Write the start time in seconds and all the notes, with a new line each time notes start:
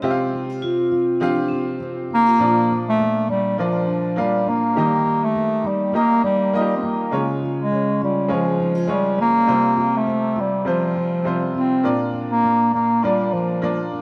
Already playing: F3 F4
0.02 C3 C4 F4 G4 E5
0.11 F5
0.34 D#4
0.50 F4
0.62 C4 F4
0.92 F4
1.20 F3 C4 D4 F4 G4 F5
1.48 C4 G4
1.80 C4
2.10 A#3 D#4
2.26 F4
2.39 A#2 F3 D4 F4 D5
2.70 D4
2.89 A3
2.99 A#3
3.29 G3 D4
3.58 F3 A#3 D4 F4 A#4 D5
3.88 D4
4.16 G3 A#3 D4 F4 F5
4.47 A#3 D4
4.76 D#3 G3 D#4 G4 D#5
5.05 D#4
5.24 A3
5.35 A#3
5.64 G3 D#4
5.92 A#3 D#4 G4 D#5
6.23 G3 D#4
6.53 A#3 D#4 F4 D#5
6.61 G4
6.77 C4
6.83 A#3 D#4
7.11 C#3 G#3 C#4 F4 G#4 C#5
7.42 F4
7.60 G#3
7.72 C#4
8.01 G3 F4
8.28 F3 G#3 C#4 F4 G#4 C#5
8.59 D#4
8.75 F4
8.87 G#3 C#4 F4 C#5
8.92 G3
9.18 A#3 F4
9.47 C3 G3 C4 F4 G4 C5
9.77 F4
9.97 A3
10.07 C4
10.36 F4
10.41 G3
10.65 C3 F3 G3 C4 F4 G4 C5
10.96 F4
11.24 C3 G3 C4 F4 C5
11.54 C4 F4
11.83 A#2 A#3 D4 F4 A#4 D5
12.13 D4
12.31 A#3
12.44 A#3
12.74 A#3 D4
13.03 G3 A#3 D4 F4 A#4 D5
13.33 F3 D4
13.62 A#3 D4 F4 D5
13.93 D4